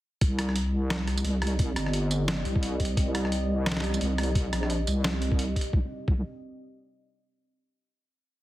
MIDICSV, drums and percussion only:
0, 0, Header, 1, 2, 480
1, 0, Start_track
1, 0, Key_signature, -3, "minor"
1, 0, Tempo, 344828
1, 299, Time_signature, 4, 2, 24, 8
1, 11728, End_track
2, 0, Start_track
2, 0, Title_t, "Drums"
2, 298, Note_on_c, 9, 36, 124
2, 298, Note_on_c, 9, 42, 83
2, 437, Note_off_c, 9, 42, 0
2, 438, Note_off_c, 9, 36, 0
2, 537, Note_on_c, 9, 37, 55
2, 537, Note_on_c, 9, 42, 70
2, 676, Note_off_c, 9, 37, 0
2, 676, Note_off_c, 9, 42, 0
2, 678, Note_on_c, 9, 37, 39
2, 773, Note_on_c, 9, 42, 81
2, 818, Note_off_c, 9, 37, 0
2, 913, Note_off_c, 9, 42, 0
2, 1257, Note_on_c, 9, 38, 117
2, 1257, Note_on_c, 9, 42, 85
2, 1396, Note_off_c, 9, 38, 0
2, 1396, Note_off_c, 9, 42, 0
2, 1496, Note_on_c, 9, 37, 38
2, 1496, Note_on_c, 9, 42, 66
2, 1635, Note_off_c, 9, 37, 0
2, 1635, Note_off_c, 9, 42, 0
2, 1636, Note_on_c, 9, 54, 67
2, 1733, Note_on_c, 9, 42, 83
2, 1775, Note_off_c, 9, 54, 0
2, 1873, Note_off_c, 9, 42, 0
2, 1974, Note_on_c, 9, 37, 64
2, 1974, Note_on_c, 9, 42, 50
2, 2044, Note_off_c, 9, 42, 0
2, 2044, Note_on_c, 9, 42, 67
2, 2113, Note_off_c, 9, 37, 0
2, 2183, Note_off_c, 9, 42, 0
2, 2214, Note_on_c, 9, 42, 85
2, 2216, Note_on_c, 9, 36, 126
2, 2353, Note_off_c, 9, 42, 0
2, 2356, Note_off_c, 9, 36, 0
2, 2453, Note_on_c, 9, 37, 54
2, 2453, Note_on_c, 9, 42, 68
2, 2453, Note_on_c, 9, 54, 36
2, 2592, Note_off_c, 9, 37, 0
2, 2592, Note_off_c, 9, 42, 0
2, 2592, Note_off_c, 9, 54, 0
2, 2594, Note_on_c, 9, 37, 38
2, 2693, Note_on_c, 9, 42, 84
2, 2734, Note_off_c, 9, 37, 0
2, 2832, Note_off_c, 9, 42, 0
2, 2933, Note_on_c, 9, 54, 64
2, 3073, Note_off_c, 9, 54, 0
2, 3174, Note_on_c, 9, 38, 127
2, 3174, Note_on_c, 9, 42, 83
2, 3313, Note_off_c, 9, 38, 0
2, 3313, Note_off_c, 9, 42, 0
2, 3413, Note_on_c, 9, 42, 67
2, 3552, Note_off_c, 9, 42, 0
2, 3558, Note_on_c, 9, 36, 113
2, 3657, Note_on_c, 9, 42, 85
2, 3697, Note_off_c, 9, 36, 0
2, 3796, Note_off_c, 9, 42, 0
2, 3895, Note_on_c, 9, 42, 52
2, 3896, Note_on_c, 9, 36, 62
2, 3968, Note_off_c, 9, 42, 0
2, 3968, Note_on_c, 9, 42, 68
2, 4035, Note_off_c, 9, 36, 0
2, 4107, Note_off_c, 9, 42, 0
2, 4136, Note_on_c, 9, 36, 127
2, 4139, Note_on_c, 9, 42, 84
2, 4275, Note_off_c, 9, 36, 0
2, 4278, Note_off_c, 9, 42, 0
2, 4381, Note_on_c, 9, 37, 52
2, 4381, Note_on_c, 9, 42, 70
2, 4521, Note_off_c, 9, 37, 0
2, 4521, Note_off_c, 9, 42, 0
2, 4522, Note_on_c, 9, 37, 37
2, 4622, Note_on_c, 9, 42, 84
2, 4662, Note_off_c, 9, 37, 0
2, 4761, Note_off_c, 9, 42, 0
2, 5099, Note_on_c, 9, 38, 119
2, 5099, Note_on_c, 9, 42, 83
2, 5171, Note_off_c, 9, 38, 0
2, 5171, Note_on_c, 9, 38, 101
2, 5238, Note_off_c, 9, 42, 0
2, 5243, Note_off_c, 9, 38, 0
2, 5243, Note_on_c, 9, 38, 83
2, 5294, Note_off_c, 9, 38, 0
2, 5294, Note_on_c, 9, 38, 68
2, 5342, Note_on_c, 9, 37, 33
2, 5342, Note_on_c, 9, 42, 67
2, 5383, Note_off_c, 9, 37, 0
2, 5383, Note_on_c, 9, 37, 28
2, 5424, Note_off_c, 9, 37, 0
2, 5424, Note_on_c, 9, 37, 22
2, 5433, Note_off_c, 9, 38, 0
2, 5465, Note_off_c, 9, 37, 0
2, 5465, Note_on_c, 9, 37, 19
2, 5482, Note_off_c, 9, 42, 0
2, 5484, Note_on_c, 9, 54, 62
2, 5499, Note_off_c, 9, 37, 0
2, 5499, Note_on_c, 9, 37, 15
2, 5525, Note_off_c, 9, 37, 0
2, 5525, Note_on_c, 9, 37, 13
2, 5555, Note_off_c, 9, 37, 0
2, 5555, Note_on_c, 9, 37, 10
2, 5582, Note_on_c, 9, 42, 84
2, 5623, Note_off_c, 9, 54, 0
2, 5694, Note_off_c, 9, 37, 0
2, 5721, Note_off_c, 9, 42, 0
2, 5823, Note_on_c, 9, 37, 61
2, 5823, Note_on_c, 9, 42, 52
2, 5893, Note_off_c, 9, 42, 0
2, 5893, Note_on_c, 9, 42, 67
2, 5962, Note_off_c, 9, 37, 0
2, 6032, Note_off_c, 9, 42, 0
2, 6058, Note_on_c, 9, 36, 127
2, 6061, Note_on_c, 9, 42, 82
2, 6197, Note_off_c, 9, 36, 0
2, 6201, Note_off_c, 9, 42, 0
2, 6303, Note_on_c, 9, 37, 52
2, 6303, Note_on_c, 9, 42, 67
2, 6303, Note_on_c, 9, 54, 37
2, 6442, Note_off_c, 9, 37, 0
2, 6442, Note_off_c, 9, 42, 0
2, 6442, Note_off_c, 9, 54, 0
2, 6443, Note_on_c, 9, 37, 36
2, 6540, Note_on_c, 9, 42, 79
2, 6582, Note_off_c, 9, 37, 0
2, 6679, Note_off_c, 9, 42, 0
2, 6782, Note_on_c, 9, 54, 65
2, 6921, Note_off_c, 9, 54, 0
2, 7021, Note_on_c, 9, 38, 125
2, 7021, Note_on_c, 9, 42, 80
2, 7160, Note_off_c, 9, 38, 0
2, 7160, Note_off_c, 9, 42, 0
2, 7262, Note_on_c, 9, 42, 65
2, 7400, Note_on_c, 9, 36, 109
2, 7401, Note_off_c, 9, 42, 0
2, 7502, Note_on_c, 9, 42, 82
2, 7539, Note_off_c, 9, 36, 0
2, 7641, Note_off_c, 9, 42, 0
2, 7739, Note_on_c, 9, 36, 64
2, 7744, Note_on_c, 9, 42, 50
2, 7813, Note_off_c, 9, 42, 0
2, 7813, Note_on_c, 9, 42, 63
2, 7878, Note_off_c, 9, 36, 0
2, 7952, Note_off_c, 9, 42, 0
2, 7980, Note_on_c, 9, 36, 117
2, 8119, Note_off_c, 9, 36, 0
2, 8460, Note_on_c, 9, 36, 113
2, 8600, Note_off_c, 9, 36, 0
2, 11728, End_track
0, 0, End_of_file